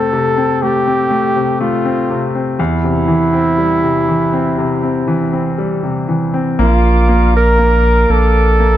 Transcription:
0, 0, Header, 1, 5, 480
1, 0, Start_track
1, 0, Tempo, 988468
1, 1257, Time_signature, 4, 2, 24, 8
1, 2220, Tempo, 1005025
1, 4226, End_track
2, 0, Start_track
2, 0, Title_t, "Tonewheel organ"
2, 0, Program_c, 0, 16
2, 3183, Note_on_c, 0, 77, 53
2, 3184, Note_on_c, 0, 74, 50
2, 3184, Note_on_c, 0, 86, 65
2, 3185, Note_on_c, 0, 58, 57
2, 4132, Note_off_c, 0, 77, 0
2, 4140, Note_on_c, 0, 76, 47
2, 4226, Note_off_c, 0, 58, 0
2, 4226, Note_off_c, 0, 74, 0
2, 4226, Note_off_c, 0, 76, 0
2, 4226, Note_off_c, 0, 86, 0
2, 4226, End_track
3, 0, Start_track
3, 0, Title_t, "Flugelhorn"
3, 0, Program_c, 1, 56
3, 0, Note_on_c, 1, 69, 80
3, 304, Note_on_c, 1, 67, 78
3, 311, Note_off_c, 1, 69, 0
3, 781, Note_off_c, 1, 67, 0
3, 783, Note_on_c, 1, 65, 72
3, 1111, Note_off_c, 1, 65, 0
3, 1262, Note_on_c, 1, 64, 76
3, 2685, Note_off_c, 1, 64, 0
3, 3196, Note_on_c, 1, 65, 79
3, 3532, Note_off_c, 1, 65, 0
3, 3555, Note_on_c, 1, 70, 94
3, 3910, Note_on_c, 1, 69, 92
3, 3917, Note_off_c, 1, 70, 0
3, 4226, Note_off_c, 1, 69, 0
3, 4226, End_track
4, 0, Start_track
4, 0, Title_t, "Grand piano"
4, 0, Program_c, 2, 0
4, 0, Control_c, 2, 64, 127
4, 0, Note_on_c, 2, 41, 53
4, 0, Note_on_c, 2, 48, 41
4, 0, Note_on_c, 2, 57, 44
4, 0, Note_on_c, 2, 60, 44
4, 56, Note_off_c, 2, 48, 0
4, 63, Note_on_c, 2, 48, 54
4, 174, Note_off_c, 2, 60, 0
4, 182, Note_on_c, 2, 60, 46
4, 294, Note_off_c, 2, 57, 0
4, 302, Note_on_c, 2, 57, 42
4, 415, Note_off_c, 2, 60, 0
4, 422, Note_on_c, 2, 60, 44
4, 530, Note_off_c, 2, 57, 0
4, 537, Note_on_c, 2, 57, 48
4, 653, Note_off_c, 2, 48, 0
4, 660, Note_on_c, 2, 48, 41
4, 772, Note_off_c, 2, 57, 0
4, 780, Note_on_c, 2, 57, 49
4, 892, Note_off_c, 2, 60, 0
4, 899, Note_on_c, 2, 60, 45
4, 1001, Note_off_c, 2, 41, 0
4, 1013, Note_off_c, 2, 48, 0
4, 1020, Note_on_c, 2, 48, 48
4, 1134, Note_off_c, 2, 60, 0
4, 1141, Note_on_c, 2, 60, 41
4, 1243, Note_off_c, 2, 57, 0
4, 1251, Note_off_c, 2, 48, 0
4, 1255, Note_off_c, 2, 60, 0
4, 1259, Note_on_c, 2, 40, 56
4, 1264, Control_c, 2, 64, 0
4, 1339, Control_c, 2, 64, 127
4, 1380, Note_on_c, 2, 48, 38
4, 1496, Note_on_c, 2, 52, 44
4, 1617, Note_on_c, 2, 60, 42
4, 1739, Note_on_c, 2, 55, 43
4, 1854, Note_off_c, 2, 48, 0
4, 1861, Note_on_c, 2, 48, 42
4, 1976, Note_off_c, 2, 52, 0
4, 1983, Note_on_c, 2, 52, 40
4, 2096, Note_off_c, 2, 60, 0
4, 2103, Note_on_c, 2, 60, 49
4, 2218, Note_off_c, 2, 48, 0
4, 2225, Note_on_c, 2, 48, 50
4, 2336, Note_off_c, 2, 60, 0
4, 2343, Note_on_c, 2, 60, 39
4, 2454, Note_off_c, 2, 52, 0
4, 2461, Note_on_c, 2, 52, 47
4, 2574, Note_off_c, 2, 60, 0
4, 2581, Note_on_c, 2, 60, 42
4, 2683, Note_off_c, 2, 55, 0
4, 2703, Note_on_c, 2, 55, 43
4, 2816, Note_off_c, 2, 48, 0
4, 2823, Note_on_c, 2, 48, 38
4, 2936, Note_off_c, 2, 52, 0
4, 2943, Note_on_c, 2, 52, 41
4, 3056, Note_off_c, 2, 60, 0
4, 3063, Note_on_c, 2, 60, 41
4, 3167, Note_off_c, 2, 40, 0
4, 3171, Note_off_c, 2, 55, 0
4, 3174, Note_off_c, 2, 48, 0
4, 3178, Note_off_c, 2, 52, 0
4, 3181, Note_off_c, 2, 60, 0
4, 3183, Note_on_c, 2, 58, 58
4, 3192, Control_c, 2, 64, 0
4, 3280, Control_c, 2, 64, 127
4, 3414, Note_off_c, 2, 58, 0
4, 3421, Note_on_c, 2, 58, 47
4, 3653, Note_off_c, 2, 58, 0
4, 3660, Note_on_c, 2, 58, 43
4, 3896, Note_off_c, 2, 58, 0
4, 3903, Note_on_c, 2, 58, 45
4, 4135, Note_off_c, 2, 58, 0
4, 4142, Note_on_c, 2, 58, 44
4, 4226, Note_off_c, 2, 58, 0
4, 4226, End_track
5, 0, Start_track
5, 0, Title_t, "Sub bass"
5, 0, Program_c, 3, 38
5, 3184, Note_on_c, 3, 34, 95
5, 3884, Note_off_c, 3, 34, 0
5, 3902, Note_on_c, 3, 34, 85
5, 4226, Note_off_c, 3, 34, 0
5, 4226, End_track
0, 0, End_of_file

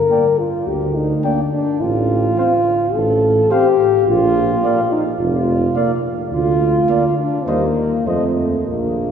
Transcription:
0, 0, Header, 1, 6, 480
1, 0, Start_track
1, 0, Key_signature, -2, "major"
1, 0, Tempo, 566572
1, 1528, Time_signature, 4, 2, 24, 8
1, 5840, Tempo, 587659
1, 6800, Tempo, 617920
1, 7613, End_track
2, 0, Start_track
2, 0, Title_t, "Trumpet"
2, 0, Program_c, 0, 56
2, 87, Note_on_c, 0, 79, 45
2, 222, Note_off_c, 0, 79, 0
2, 1052, Note_on_c, 0, 79, 52
2, 1187, Note_off_c, 0, 79, 0
2, 2013, Note_on_c, 0, 77, 47
2, 2149, Note_off_c, 0, 77, 0
2, 2972, Note_on_c, 0, 77, 56
2, 3108, Note_off_c, 0, 77, 0
2, 3940, Note_on_c, 0, 77, 59
2, 4075, Note_off_c, 0, 77, 0
2, 4874, Note_on_c, 0, 77, 54
2, 5009, Note_off_c, 0, 77, 0
2, 5836, Note_on_c, 0, 77, 45
2, 5967, Note_off_c, 0, 77, 0
2, 6318, Note_on_c, 0, 75, 47
2, 6448, Note_off_c, 0, 75, 0
2, 6809, Note_on_c, 0, 75, 45
2, 6933, Note_off_c, 0, 75, 0
2, 7613, End_track
3, 0, Start_track
3, 0, Title_t, "Flugelhorn"
3, 0, Program_c, 1, 56
3, 95, Note_on_c, 1, 74, 42
3, 231, Note_off_c, 1, 74, 0
3, 1053, Note_on_c, 1, 74, 44
3, 1189, Note_off_c, 1, 74, 0
3, 2013, Note_on_c, 1, 72, 47
3, 2149, Note_off_c, 1, 72, 0
3, 2967, Note_on_c, 1, 72, 49
3, 3103, Note_off_c, 1, 72, 0
3, 3927, Note_on_c, 1, 74, 53
3, 4063, Note_off_c, 1, 74, 0
3, 4875, Note_on_c, 1, 74, 53
3, 5011, Note_off_c, 1, 74, 0
3, 5836, Note_on_c, 1, 74, 48
3, 5967, Note_off_c, 1, 74, 0
3, 6311, Note_on_c, 1, 72, 47
3, 6442, Note_off_c, 1, 72, 0
3, 6798, Note_on_c, 1, 72, 41
3, 6922, Note_off_c, 1, 72, 0
3, 7613, End_track
4, 0, Start_track
4, 0, Title_t, "French horn"
4, 0, Program_c, 2, 60
4, 0, Note_on_c, 2, 70, 69
4, 328, Note_on_c, 2, 65, 64
4, 341, Note_off_c, 2, 70, 0
4, 568, Note_on_c, 2, 67, 58
4, 581, Note_off_c, 2, 65, 0
4, 809, Note_on_c, 2, 63, 71
4, 822, Note_off_c, 2, 67, 0
4, 1053, Note_on_c, 2, 62, 62
4, 1065, Note_off_c, 2, 63, 0
4, 1290, Note_off_c, 2, 62, 0
4, 1295, Note_on_c, 2, 62, 75
4, 1531, Note_on_c, 2, 65, 82
4, 1544, Note_off_c, 2, 62, 0
4, 2495, Note_on_c, 2, 69, 82
4, 2508, Note_off_c, 2, 65, 0
4, 2973, Note_on_c, 2, 67, 92
4, 2986, Note_off_c, 2, 69, 0
4, 3449, Note_off_c, 2, 67, 0
4, 3454, Note_on_c, 2, 65, 92
4, 4155, Note_off_c, 2, 65, 0
4, 4168, Note_on_c, 2, 63, 70
4, 4273, Note_off_c, 2, 63, 0
4, 4407, Note_on_c, 2, 65, 73
4, 5106, Note_off_c, 2, 65, 0
4, 5360, Note_on_c, 2, 65, 94
4, 6046, Note_off_c, 2, 65, 0
4, 6077, Note_on_c, 2, 62, 68
4, 6316, Note_on_c, 2, 58, 60
4, 6328, Note_off_c, 2, 62, 0
4, 6795, Note_on_c, 2, 57, 57
4, 6807, Note_off_c, 2, 58, 0
4, 7266, Note_off_c, 2, 57, 0
4, 7270, Note_on_c, 2, 58, 57
4, 7613, Note_off_c, 2, 58, 0
4, 7613, End_track
5, 0, Start_track
5, 0, Title_t, "Euphonium"
5, 0, Program_c, 3, 58
5, 85, Note_on_c, 3, 58, 44
5, 221, Note_off_c, 3, 58, 0
5, 1056, Note_on_c, 3, 58, 52
5, 1191, Note_off_c, 3, 58, 0
5, 2014, Note_on_c, 3, 60, 52
5, 2150, Note_off_c, 3, 60, 0
5, 2978, Note_on_c, 3, 60, 56
5, 3113, Note_off_c, 3, 60, 0
5, 3931, Note_on_c, 3, 58, 55
5, 4066, Note_off_c, 3, 58, 0
5, 4881, Note_on_c, 3, 58, 58
5, 5016, Note_off_c, 3, 58, 0
5, 5838, Note_on_c, 3, 58, 53
5, 5969, Note_off_c, 3, 58, 0
5, 6312, Note_on_c, 3, 55, 44
5, 6443, Note_off_c, 3, 55, 0
5, 6800, Note_on_c, 3, 53, 44
5, 6924, Note_off_c, 3, 53, 0
5, 7613, End_track
6, 0, Start_track
6, 0, Title_t, "Tuba"
6, 0, Program_c, 4, 58
6, 567, Note_on_c, 4, 38, 58
6, 970, Note_off_c, 4, 38, 0
6, 1527, Note_on_c, 4, 33, 61
6, 1929, Note_off_c, 4, 33, 0
6, 2488, Note_on_c, 4, 33, 63
6, 2890, Note_off_c, 4, 33, 0
6, 3445, Note_on_c, 4, 34, 71
6, 3848, Note_off_c, 4, 34, 0
6, 4400, Note_on_c, 4, 29, 63
6, 4797, Note_off_c, 4, 29, 0
6, 5352, Note_on_c, 4, 38, 64
6, 5756, Note_off_c, 4, 38, 0
6, 6314, Note_on_c, 4, 39, 54
6, 6717, Note_off_c, 4, 39, 0
6, 6794, Note_on_c, 4, 41, 51
6, 7190, Note_off_c, 4, 41, 0
6, 7267, Note_on_c, 4, 34, 50
6, 7613, Note_off_c, 4, 34, 0
6, 7613, End_track
0, 0, End_of_file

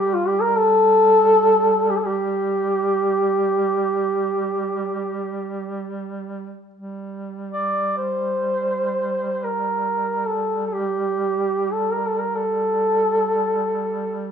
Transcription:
0, 0, Header, 1, 3, 480
1, 0, Start_track
1, 0, Key_signature, -2, "minor"
1, 0, Tempo, 500000
1, 13744, End_track
2, 0, Start_track
2, 0, Title_t, "Duduk"
2, 0, Program_c, 0, 69
2, 0, Note_on_c, 0, 67, 84
2, 132, Note_on_c, 0, 65, 84
2, 147, Note_off_c, 0, 67, 0
2, 264, Note_on_c, 0, 67, 89
2, 278, Note_off_c, 0, 65, 0
2, 397, Note_on_c, 0, 70, 94
2, 411, Note_off_c, 0, 67, 0
2, 542, Note_on_c, 0, 69, 110
2, 556, Note_off_c, 0, 70, 0
2, 1823, Note_on_c, 0, 67, 75
2, 1838, Note_off_c, 0, 69, 0
2, 1889, Note_on_c, 0, 69, 61
2, 1904, Note_off_c, 0, 67, 0
2, 1975, Note_on_c, 0, 67, 86
2, 1989, Note_off_c, 0, 69, 0
2, 5901, Note_off_c, 0, 67, 0
2, 7223, Note_on_c, 0, 74, 59
2, 7615, Note_off_c, 0, 74, 0
2, 7652, Note_on_c, 0, 72, 70
2, 9062, Note_on_c, 0, 70, 66
2, 9076, Note_off_c, 0, 72, 0
2, 9853, Note_on_c, 0, 69, 65
2, 9867, Note_off_c, 0, 70, 0
2, 10237, Note_off_c, 0, 69, 0
2, 10243, Note_on_c, 0, 69, 46
2, 10300, Note_on_c, 0, 67, 67
2, 10315, Note_off_c, 0, 69, 0
2, 11253, Note_on_c, 0, 69, 63
2, 11267, Note_off_c, 0, 67, 0
2, 11444, Note_on_c, 0, 70, 62
2, 11458, Note_off_c, 0, 69, 0
2, 11581, Note_on_c, 0, 69, 59
2, 11595, Note_off_c, 0, 70, 0
2, 11706, Note_on_c, 0, 70, 59
2, 11720, Note_off_c, 0, 69, 0
2, 11862, Note_on_c, 0, 69, 75
2, 11876, Note_off_c, 0, 70, 0
2, 13668, Note_off_c, 0, 69, 0
2, 13744, End_track
3, 0, Start_track
3, 0, Title_t, "Duduk"
3, 0, Program_c, 1, 69
3, 0, Note_on_c, 1, 55, 43
3, 6305, Note_off_c, 1, 55, 0
3, 6468, Note_on_c, 1, 55, 36
3, 13744, Note_off_c, 1, 55, 0
3, 13744, End_track
0, 0, End_of_file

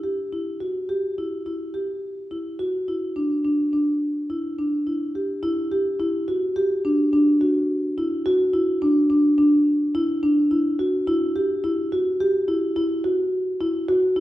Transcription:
0, 0, Header, 1, 2, 480
1, 0, Start_track
1, 0, Tempo, 568720
1, 2191, Time_signature, 5, 2, 24, 8
1, 5066, Tempo, 562852
1, 12058, End_track
2, 0, Start_track
2, 0, Title_t, "Marimba"
2, 0, Program_c, 0, 12
2, 31, Note_on_c, 0, 67, 59
2, 230, Note_off_c, 0, 67, 0
2, 275, Note_on_c, 0, 64, 62
2, 473, Note_off_c, 0, 64, 0
2, 510, Note_on_c, 0, 66, 60
2, 710, Note_off_c, 0, 66, 0
2, 752, Note_on_c, 0, 67, 59
2, 952, Note_off_c, 0, 67, 0
2, 997, Note_on_c, 0, 64, 58
2, 1195, Note_off_c, 0, 64, 0
2, 1233, Note_on_c, 0, 64, 66
2, 1432, Note_off_c, 0, 64, 0
2, 1470, Note_on_c, 0, 67, 55
2, 1872, Note_off_c, 0, 67, 0
2, 1951, Note_on_c, 0, 64, 57
2, 2152, Note_off_c, 0, 64, 0
2, 2188, Note_on_c, 0, 66, 68
2, 2390, Note_off_c, 0, 66, 0
2, 2432, Note_on_c, 0, 64, 59
2, 2633, Note_off_c, 0, 64, 0
2, 2668, Note_on_c, 0, 62, 61
2, 2870, Note_off_c, 0, 62, 0
2, 2908, Note_on_c, 0, 62, 59
2, 3110, Note_off_c, 0, 62, 0
2, 3150, Note_on_c, 0, 62, 58
2, 3551, Note_off_c, 0, 62, 0
2, 3627, Note_on_c, 0, 64, 63
2, 3829, Note_off_c, 0, 64, 0
2, 3871, Note_on_c, 0, 62, 55
2, 4070, Note_off_c, 0, 62, 0
2, 4108, Note_on_c, 0, 64, 56
2, 4308, Note_off_c, 0, 64, 0
2, 4349, Note_on_c, 0, 67, 56
2, 4548, Note_off_c, 0, 67, 0
2, 4581, Note_on_c, 0, 64, 88
2, 4783, Note_off_c, 0, 64, 0
2, 4824, Note_on_c, 0, 67, 74
2, 5024, Note_off_c, 0, 67, 0
2, 5061, Note_on_c, 0, 64, 80
2, 5263, Note_off_c, 0, 64, 0
2, 5303, Note_on_c, 0, 66, 76
2, 5505, Note_off_c, 0, 66, 0
2, 5542, Note_on_c, 0, 67, 75
2, 5745, Note_off_c, 0, 67, 0
2, 5787, Note_on_c, 0, 62, 72
2, 5988, Note_off_c, 0, 62, 0
2, 6026, Note_on_c, 0, 62, 80
2, 6228, Note_off_c, 0, 62, 0
2, 6267, Note_on_c, 0, 66, 66
2, 6669, Note_off_c, 0, 66, 0
2, 6750, Note_on_c, 0, 64, 76
2, 6950, Note_off_c, 0, 64, 0
2, 6989, Note_on_c, 0, 66, 92
2, 7190, Note_off_c, 0, 66, 0
2, 7226, Note_on_c, 0, 64, 79
2, 7428, Note_off_c, 0, 64, 0
2, 7469, Note_on_c, 0, 62, 80
2, 7669, Note_off_c, 0, 62, 0
2, 7707, Note_on_c, 0, 62, 79
2, 7908, Note_off_c, 0, 62, 0
2, 7948, Note_on_c, 0, 62, 81
2, 8349, Note_off_c, 0, 62, 0
2, 8430, Note_on_c, 0, 64, 87
2, 8630, Note_off_c, 0, 64, 0
2, 8671, Note_on_c, 0, 62, 78
2, 8871, Note_off_c, 0, 62, 0
2, 8911, Note_on_c, 0, 64, 77
2, 9110, Note_off_c, 0, 64, 0
2, 9151, Note_on_c, 0, 66, 78
2, 9351, Note_off_c, 0, 66, 0
2, 9390, Note_on_c, 0, 64, 98
2, 9590, Note_off_c, 0, 64, 0
2, 9632, Note_on_c, 0, 67, 77
2, 9831, Note_off_c, 0, 67, 0
2, 9873, Note_on_c, 0, 64, 86
2, 10071, Note_off_c, 0, 64, 0
2, 10115, Note_on_c, 0, 66, 81
2, 10313, Note_off_c, 0, 66, 0
2, 10354, Note_on_c, 0, 67, 84
2, 10552, Note_off_c, 0, 67, 0
2, 10592, Note_on_c, 0, 64, 78
2, 10790, Note_off_c, 0, 64, 0
2, 10831, Note_on_c, 0, 64, 92
2, 11030, Note_off_c, 0, 64, 0
2, 11069, Note_on_c, 0, 66, 79
2, 11469, Note_off_c, 0, 66, 0
2, 11551, Note_on_c, 0, 64, 83
2, 11750, Note_off_c, 0, 64, 0
2, 11788, Note_on_c, 0, 66, 98
2, 11988, Note_off_c, 0, 66, 0
2, 12026, Note_on_c, 0, 64, 80
2, 12058, Note_off_c, 0, 64, 0
2, 12058, End_track
0, 0, End_of_file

